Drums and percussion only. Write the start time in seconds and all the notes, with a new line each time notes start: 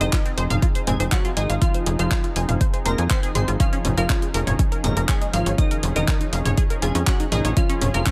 0.01 closed hi-hat
0.13 kick, clap, closed hi-hat
0.26 closed hi-hat
0.38 open hi-hat
0.50 closed hi-hat, mid tom
0.62 kick, closed hi-hat
0.75 closed hi-hat
0.87 mid tom, open hi-hat
1.00 closed hi-hat
1.12 kick, clap, closed hi-hat
1.25 closed hi-hat
1.37 open hi-hat
1.50 closed hi-hat
1.62 kick, closed hi-hat
1.74 closed hi-hat
1.86 open hi-hat
1.99 closed hi-hat
2.11 kick, clap, closed hi-hat
2.24 closed hi-hat
2.36 open hi-hat
2.49 closed hi-hat, mid tom
2.61 kick, closed hi-hat
2.74 closed hi-hat
2.86 open hi-hat
2.98 closed hi-hat
3.10 kick, clap, closed hi-hat
3.23 closed hi-hat
3.35 mid tom, open hi-hat
3.48 closed hi-hat
3.60 kick, closed hi-hat
3.73 closed hi-hat
3.85 mid tom, open hi-hat
3.98 closed hi-hat
4.10 kick, clap, closed hi-hat
4.22 closed hi-hat
4.34 open hi-hat
4.47 closed hi-hat, mid tom
4.59 kick, closed hi-hat
4.72 closed hi-hat
4.84 mid tom, open hi-hat
4.97 closed hi-hat
5.09 kick, clap, closed hi-hat
5.22 closed hi-hat
5.33 open hi-hat
5.46 closed hi-hat
5.58 kick, closed hi-hat
5.71 closed hi-hat
5.83 open hi-hat
5.96 closed hi-hat
6.08 kick, clap, closed hi-hat
6.21 closed hi-hat
6.33 open hi-hat
6.45 closed hi-hat, mid tom
6.57 kick, closed hi-hat
6.70 closed hi-hat
6.82 open hi-hat
6.95 closed hi-hat
7.07 kick, clap, closed hi-hat
7.20 closed hi-hat
7.32 mid tom, open hi-hat
7.45 closed hi-hat
7.57 kick, closed hi-hat
7.70 closed hi-hat
7.82 mid tom, open hi-hat
7.94 closed hi-hat
8.06 kick, clap, closed hi-hat